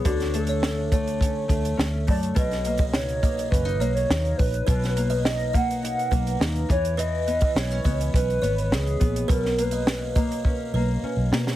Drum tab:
HH |xxxx--xxx-xx--ox|xxxx-xxxxxxx-xox|xxxx-xxxxxxx-xxx|x-xx-xxxxxxx-xxx|
SD |-o--o-------o---|-o--o-------o---|-o--o-------o---|----o-------o---|
BD |o-----o-o-o---o-|o--o--o-o-----o-|o-----o---o---o-|---o--o-o-----o-|

HH |x-xx--xx--------|
SD |-o--o---------oo|
BD |o-----o-o-------|